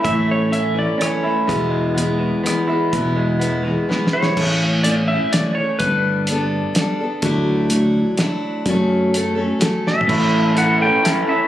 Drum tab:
CC |------------------|------------------|------------------|x-----------------|
HH |x-----x-----x-----|x-----x-----x-----|x-----x-----------|------x-----x-----|
SD |------------r-----|------------r-----|------------o-o-o-|------------o-----|
FT |------------------|------------------|------------------|------------------|
BD |o-----------------|o-----------------|o-----------------|o-----------------|

CC |------------------|------------------|------------------|x-----------------|
HH |x-----x-----x-----|x-----x-----x-----|x-----x-----x-----|------x-----x-----|
SD |------------o-----|------------o-----|------------o--o--|------------o-----|
FT |------------------|------------------|-----------------o|------------------|
BD |o-----------------|o-----------------|o-----------------|o-----------------|